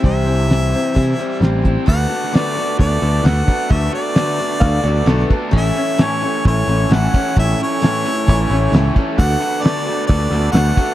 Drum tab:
CC |----------------|x---------------|----------------|x---------------|
RD |----------------|--x-x-x-x-x-x-x-|x-x-x-x-x-x-x-x-|--x-x-x-x-x-x-x-|
HH |x-x-x-x-x-x-x-x-|----------------|----------------|----------------|
SD |----o-------o---|---oo-o-----o---|-o--o-------o---|----o-o-----o---|
BD |o-------o-----o-|o-------o-----o-|o-------o-----o-|o-------o-----o-|

CC |----------------|x---------------|
RD |x-x-x-x-x-x-x-x-|--x-x-x-x-x-x-x-|
HH |----------------|----------------|
SD |-o--o-------o---|----o-o-----o---|
BD |o-------o-----o-|o-------o-----o-|